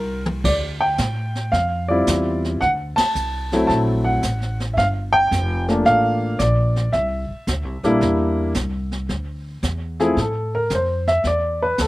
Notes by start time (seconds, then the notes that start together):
Already playing: C2 A#4
0.26 mid tom
0.44 D2 D5, brush sweep, kick, snare, crash
0.81 G5
0.98 A2, kick, snare, hi-hat pedal
1.35 snare
1.52 F2 F5, brush sweep, kick, snare
1.88 G3 C4 E4 F4 D5
2.07 E2, kick, snare, hi-hat pedal
2.44 snare
2.61 D2 F#5, brush sweep, kick, snare
2.96 A5, muted upright bass stroke, snare, ride
3.15 C2, hi-hat pedal
3.52 F#3 A3 C4 E4, snare
3.67 A#1 A5, brush sweep, kick, snare
4.04 F#5
4.23 A1, kick, snare, hi-hat pedal
4.42 snare
4.60 snare
4.73 G1 E5, kick
4.78 F5, brush sweep, snare
5.12 G5
5.31 F1, kick, snare, hi-hat pedal
5.68 A3 A#3 D4 F4, snare
5.85 A1 F5, brush sweep, kick, snare
6.39 A#1 D5, kick, snare, hi-hat pedal
6.76 snare
6.92 C2 E5, brush sweep, kick, snare
7.30 muted upright bass stroke
7.47 D2, kick, snare, hi-hat pedal
7.64 C2
7.83 A#1 G3 A#3 D4 E4, snare
8.01 E2, brush sweep, kick, snare
8.54 C2, kick, snare, hi-hat pedal
8.92 snare
9.09 D2, brush sweep, kick, snare
9.63 E2, kick, snare, hi-hat pedal
10.00 F3 A3 C4 E4 G#4, snare
10.17 A2 A4, brush sweep, kick, snare
10.55 A#4
10.70 F2, kick, snare, hi-hat pedal
10.75 C5
11.07 E5, snare
11.24 E2 D5, brush sweep, kick, snare
11.62 B4
11.78 D2 A4, kick, snare, hi-hat pedal